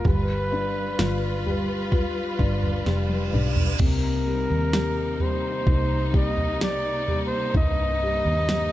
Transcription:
0.05 0.95 G1 loud
0.05 1.45 G3 medium
0.05 3.77 G3 medium
0.05 3.77 F4 medium
0.05 3.77 B4 medium
0.05 1.90 B4 medium
0.05 kick loud
0.05 floor tom loud
0.52 2.36 D4 soft
0.99 2.36 G1 loud
0.99 1.92 F4 soft
0.99 snare loud
1.46 2.84 G3 medium
1.46 floor tom medium
1.92 3.76 F4 soft
1.92 kick medium
1.92 floor tom medium
1.92 reverse cymbal medium
2.39 2.83 G1 medium
2.39 3.32 D4 medium
2.39 kick medium
2.63 floor tom medium
2.86 3.30 F1 medium
2.86 3.77 G3 medium
2.86 snare soft
3.10 high tom medium
3.33 3.77 B1 medium
3.33 3.79 D4 medium
3.33 mid tom medium
3.56 floor tom medium
3.79 4.46 C2 loud
3.79 8.72 C3 medium
3.79 7.51 C3 medium
3.79 8.72 A#3 medium
3.79 8.72 D#4 medium
3.79 5.24 A#4 medium
3.79 kick loud
3.79 floor tom loud
3.79 crash medium
4.26 5.19 G3 soft
4.50 5.64 D#2 medium
4.73 6.57 G4 medium
4.73 snare medium
5.20 6.13 G3 medium
5.20 6.15 C5 medium
5.20 floor tom medium
5.67 7.51 C2 loud
5.67 7.51 D#4 soft
5.67 kick medium
5.67 floor tom medium
6.14 7.07 G3 medium
6.14 6.59 D#5 medium
6.14 kick medium
6.37 floor tom medium
6.61 8.45 G4 medium
6.61 7.21 D5 loud
6.61 snare medium
7.08 8.01 G3 medium
7.08 floor tom medium
7.27 7.54 C5 loud
7.54 8.21 C2 loud
7.54 8.72 G2 medium
7.54 8.72 D#5 loud
7.54 kick loud
7.54 floor tom loud
8.03 8.72 G3 medium
8.25 8.72 D#2 medium
8.49 8.72 G4 medium
8.49 snare loud

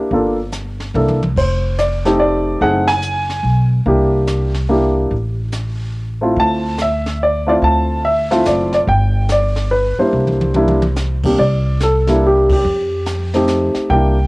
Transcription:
0.00 0.11 A#3 medium
0.00 0.11 D4 medium
0.00 0.12 E4 medium
0.00 0.12 G4 medium
0.11 0.90 G1 medium
0.11 0.36 A#3 medium
0.11 0.36 D4 soft
0.11 0.36 F4 soft
0.11 0.37 A4 medium
0.11 brush sweep soft
0.11 kick soft
0.52 snare medium
0.52 hi-hat pedal medium
0.80 snare soft
0.94 1.33 C2 medium
0.94 1.19 A#3 soft
0.94 1.19 D4 soft
0.94 1.19 E4 soft
0.94 1.19 A4 medium
0.94 mid tom soft
1.08 mid tom soft
1.23 mid tom medium
1.36 2.57 F1 medium
1.36 1.80 C5 medium
1.36 brush sweep soft
1.36 kick medium
1.36 crash medium
1.78 2.18 D5 medium
1.78 snare medium
1.78 hi-hat pedal medium
2.05 2.59 A3 medium
2.05 2.59 C4 medium
2.05 2.59 D#4 medium
2.05 2.59 G4 medium
2.05 snare soft
2.20 2.63 D5 medium
2.61 3.41 F#1 medium
2.61 2.85 A3 medium
2.61 2.86 C4 medium
2.61 2.86 D#4 medium
2.61 2.86 G#4 medium
2.61 2.87 F#5 medium
2.61 brush sweep soft
2.61 kick soft
2.87 3.67 G#5 loud
2.87 snare medium
2.87 ride medium
3.02 hi-hat pedal medium
3.30 snare soft
3.43 3.83 B1 medium
3.86 5.07 C2 medium
3.86 4.49 A#3 medium
3.86 4.50 D4 medium
3.86 4.50 E4 medium
3.86 4.50 G4 medium
3.86 brush sweep soft
3.86 kick soft
4.27 snare medium
4.27 hi-hat pedal soft
4.54 snare soft
4.69 5.11 A#3 medium
4.69 5.11 D4 soft
4.69 5.12 E4 medium
4.69 5.12 G4 medium
5.11 6.32 A1 medium
5.11 brush sweep soft
5.11 kick soft
5.52 snare medium
5.52 hi-hat pedal soft
6.21 6.75 A3 medium
6.21 6.75 C4 soft
6.21 6.76 E4 medium
6.21 6.76 F4 medium
6.36 7.58 D2 medium
6.36 6.77 A5 loud
6.36 brush sweep soft
6.36 kick soft
6.78 7.19 E5 medium
6.78 snare medium
6.78 hi-hat pedal soft
7.06 snare soft
7.23 7.48 D5 medium
7.47 8.01 A3 medium
7.47 8.01 C4 medium
7.47 8.01 E4 medium
7.47 8.01 F4 medium
7.47 7.54 D5 medium
7.62 8.42 D2 medium
7.62 8.02 A5 medium
7.62 brush sweep soft
7.62 kick soft
8.05 8.47 E5 medium
8.31 8.85 A3 medium
8.31 8.85 C4 medium
8.31 8.85 E4 medium
8.31 8.85 F4 medium
8.31 snare soft
8.45 8.85 F#1 medium
8.45 8.73 D5 medium
8.45 snare medium
8.45 hi-hat pedal soft
8.73 8.79 D5 medium
8.73 snare soft
8.87 9.94 G1 medium
8.87 9.31 G5 medium
8.87 brush sweep soft
8.87 kick soft
9.29 9.70 D5 medium
9.29 snare medium
9.29 hi-hat pedal medium
9.56 snare soft
9.71 9.96 B4 medium
9.98 10.52 G3 medium
9.98 10.53 A#3 soft
9.98 10.53 D4 soft
9.98 10.53 E4 medium
9.98 11.20 C5 medium
9.98 muted upright bass stroke soft
10.13 11.35 C2 medium
10.27 mid tom soft
10.41 mid tom medium
10.54 10.80 G3 medium
10.54 10.80 A#3 medium
10.54 10.80 D4 medium
10.54 10.80 E4 medium
10.54 mid tom medium
10.68 mid tom medium
10.82 mid tom medium
10.96 snare medium
10.96 hi-hat pedal soft
11.23 11.37 C3 soft
11.23 11.38 G3 soft
11.23 11.38 A#3 soft
11.23 11.38 D4 soft
11.23 11.38 G4 medium
11.23 kick medium
11.23 crash medium
11.38 12.60 C2 medium
11.38 11.78 D5 medium
11.38 brush sweep soft
11.38 kick soft
11.80 12.25 A4 medium
11.80 snare medium
11.80 hi-hat pedal medium
12.07 12.61 G3 medium
12.07 12.62 A#3 soft
12.07 12.62 D4 medium
12.07 12.62 E4 medium
12.07 snare soft
12.27 12.50 G4 medium
12.49 13.31 G4 medium
12.49 kick medium
12.49 ride medium
12.64 13.71 F2 medium
12.64 brush sweep soft
13.06 snare medium
13.06 hi-hat pedal medium
13.34 13.87 A3 medium
13.34 13.87 C4 medium
13.34 13.88 D#4 medium
13.34 13.88 G4 medium
13.34 snare soft
13.47 snare medium
13.47 hi-hat pedal soft
13.74 muted upright bass stroke soft
13.74 snare soft
13.90 14.27 C2 medium
13.90 14.15 A#3 medium
13.90 14.15 D4 soft
13.90 14.15 E4 soft
13.90 14.15 G4 medium
13.90 14.27 G5 medium
13.90 brush sweep soft
13.90 kick soft

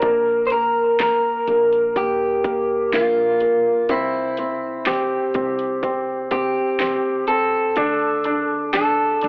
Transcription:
0.00 1.44 A#1 medium
0.00 0.50 A#3 medium
0.00 0.41 A#4 loud
0.00 kick loud
0.00 closed hi-hat medium
0.47 0.52 C5 medium
0.47 closed hi-hat medium
0.51 0.98 A#3 soft
0.51 0.97 A#4 medium
0.99 1.46 A#3 soft
0.99 1.97 A#4 medium
0.99 snare loud
0.99 closed hi-hat medium
1.47 2.89 A#1 medium
1.47 1.95 A#3 soft
1.47 closed hi-hat medium
1.73 closed hi-hat soft
1.96 2.43 A#3 soft
1.96 2.96 G4 medium
1.96 kick medium
1.96 closed hi-hat medium
2.44 2.92 A#3 medium
2.44 kick medium
2.44 closed hi-hat medium
2.92 3.86 A#1 medium
2.92 3.40 A#3 medium
2.92 3.86 F4 medium
2.92 snare medium
2.92 closed hi-hat medium
3.40 3.88 A#3 soft
3.40 closed hi-hat soft
3.89 5.31 C2 medium
3.89 4.37 C4 medium
3.89 4.90 E4 medium
3.89 kick medium
3.89 closed hi-hat medium
4.37 4.85 C4 soft
4.37 closed hi-hat medium
4.86 5.34 C4 soft
4.86 6.28 G4 medium
4.86 snare loud
4.86 closed hi-hat medium
5.34 7.25 C2 medium
5.34 5.82 C4 medium
5.34 kick medium
5.34 closed hi-hat medium
5.59 closed hi-hat soft
5.83 6.30 C4 medium
5.83 kick medium
5.83 closed hi-hat medium
6.31 6.79 C4 medium
6.31 7.27 G4 medium
6.31 kick medium
6.31 closed hi-hat medium
6.79 7.27 C4 medium
6.79 snare medium
6.79 closed hi-hat medium
7.27 7.76 C4 soft
7.27 8.69 A4 loud
7.27 closed hi-hat medium
7.76 9.18 D2 medium
7.76 8.24 D4 medium
7.76 kick medium
7.76 closed hi-hat medium
8.24 8.72 D4 medium
8.24 closed hi-hat medium
8.73 9.21 D4 soft
8.73 9.28 A4 medium
8.73 snare loud
8.73 closed hi-hat medium
9.22 9.28 D2 loud
9.22 9.28 D4 soft
9.22 closed hi-hat medium

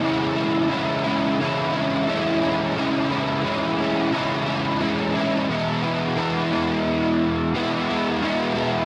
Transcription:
0.00 1.39 C#3 loud
0.00 0.69 E3 loud
0.00 0.37 G#3 medium
0.00 0.36 C#4 loud
0.00 0.35 E4 loud
0.35 0.69 G#3 medium
0.35 0.71 C#4 medium
0.35 0.71 E4 medium
0.69 1.40 E3 medium
0.69 1.06 G#3 medium
0.69 1.06 C#4 medium
0.69 1.04 E4 medium
1.04 1.40 G#3 medium
1.04 1.40 C#4 medium
1.04 1.42 E4 medium
1.40 2.08 C#3 medium
1.40 2.07 E3 medium
1.40 1.75 G#3 medium
1.40 1.73 C#4 medium
1.40 1.73 E4 loud
1.73 2.08 G#3 medium
1.73 2.08 C#4 medium
1.73 2.10 E4 medium
2.07 2.76 E3 medium
2.07 2.44 G#3 medium
2.07 2.41 C#4 medium
2.07 2.41 E4 medium
2.41 2.76 G#3 medium
2.41 2.77 C#4 medium
2.41 2.78 E4 medium
2.76 3.44 C#3 medium
2.76 3.41 E3 loud
2.76 3.11 G#3 loud
2.76 3.10 C#4 loud
2.76 3.08 E4 medium
3.09 3.42 G#3 medium
3.09 3.43 C#4 medium
3.09 3.44 E4 medium
3.43 4.11 E3 medium
3.43 3.80 G#3 medium
3.43 3.79 C#4 medium
3.43 3.77 E4 medium
3.78 4.12 G#3 medium
3.78 4.13 C#4 medium
3.78 4.13 E4 medium
4.11 4.80 C#3 medium
4.11 4.79 E3 loud
4.11 4.47 G#3 loud
4.11 4.46 C#4 loud
4.11 4.44 E4 loud
4.45 4.79 G#3 medium
4.45 4.81 C#4 medium
4.45 4.81 E4 medium
4.80 5.47 E3 medium
4.80 5.16 G#3 medium
4.80 5.14 C#4 medium
4.80 5.13 E4 medium
5.15 5.48 G#3 medium
5.15 5.47 C#4 medium
5.15 5.47 E4 medium
5.48 8.21 E2 loud
5.48 6.17 B2 loud
5.48 5.84 E3 loud
5.48 5.84 G#3 loud
5.48 5.83 B3 loud
5.48 5.82 E4 loud
5.82 6.16 E3 medium
5.82 6.17 G#3 medium
5.82 6.17 B3 medium
5.82 6.19 E4 medium
6.16 6.53 E3 medium
6.16 6.52 G#3 medium
6.16 6.52 B3 medium
6.16 6.50 E4 medium
6.51 7.53 E3 medium
6.51 7.55 G#3 medium
6.51 7.55 B3 medium
6.51 7.57 E4 medium
7.54 7.90 E3 medium
7.54 7.89 G#3 medium
7.54 7.89 B3 medium
7.54 7.87 E4 loud
7.87 8.22 E3 medium
7.87 8.23 G#3 medium
7.87 8.23 B3 medium
7.87 8.24 E4 medium
8.21 8.85 E2 loud
8.21 8.85 B2 medium
8.21 8.57 E3 medium
8.21 8.56 G#3 loud
8.21 8.55 B3 loud
8.21 8.53 E4 loud
8.54 8.85 E3 medium
8.54 8.85 G#3 medium
8.54 8.85 B3 medium
8.54 8.85 E4 medium

